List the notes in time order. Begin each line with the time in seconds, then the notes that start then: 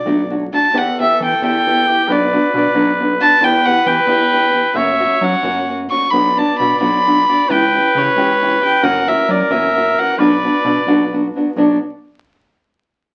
Already playing: D5
0.05 B1 B2 F#3 A3 D4 F#4
0.30 F#3 A3 D4 F#4
0.52 F#3 A3 D4 F#4 A5
0.73 E2 E3 B3 E4 G4 A4
0.77 F#5
0.99 E3 B3 E4 G4 E5
1.20 E3 B3 E4 G4
1.25 G5
1.42 E2 E3 B3 E4 G4 G5
1.66 E3 B3 E4 G4
1.87 E3 B3 E4 G4
2.08 B1 B2 F#3 B3 D4 F#4 B4 D5
2.32 F#3 B3 D4 F#4
2.53 B2 F#3 B3 D4 F#4 D5
2.74 B1 B2 F#3 B3 D4 F#4
2.99 F#3 B3 D4 F#4
3.19 F#3 B3 D4 F#4 A5
3.41 E2 E3 B3 E4 G4 B4 G5
3.65 E3 B3 E4 G4 F#5
3.86 E3 B3 E4 G4 G5
4.07 E2 E3 B3 E4 G4 G5
4.33 E3 B3 E4 G4
4.52 E3 B3 E4 G4
4.74 F#2 C#3 F#3 A#3 C#4 F#4 C#5 E5
4.99 F#3 A#3 C#4 F#4
5.21 F#3 A#3 C#4 F#4 F#5
5.43 F#2 C#3 F#3 A#3 C#4 F#4
5.68 F#3 A#3 C#4 F#4
5.90 F#3 A#3 C#4 F#4 C#6
6.10 B1 B2 F#3 B3 D4 F#4 D5 B5
6.37 F#3 B3 D4 F#4 A5
6.59 B2 F#3 B3 D4 F#4 B5
6.80 B1 B2 F#3 B3 D4 F#4 B5
7.05 F#3 B3 D4 F#4
7.28 F#3 B3 D4 F#4 D5
7.49 C#2 C#3 E3 C#4 E4 G4 B4 G5
7.73 E3 C#4 E4 G4
7.95 C#3 E3 C#4 E4 G4 C#5
8.16 C#2 C#3 E3 C#4 E4 G4
8.41 E3 C#4 E4 G4
8.61 E3 C#4 E4 G4 G5
8.82 F#2 C#3 E3 A#3 C#4 F#4 A#4 F#5
9.07 E3 A#3 C#4 F#4 E5
9.29 E3 F#3 A#3 C#4 F#4 D5
9.50 F#2 C#3 E3 A#3 C#4 F#4 E5
9.76 E3 A#3 C#4 F#4
9.97 E3 A#3 C#4 F#4 F#5
10.18 B1 B2 F#3 B3 D4 F#4 B4 D5
10.43 F#3 B3 D4 F#4
10.64 B2 F#3 B3 D4 F#4
10.86 B1 B2 F#3 B3 D4 F#4
11.12 F#3 B3 D4 F#4
11.35 F#3 B3 D4 F#4
11.56 B1 B2 F#3 B3 D4 F#4 D5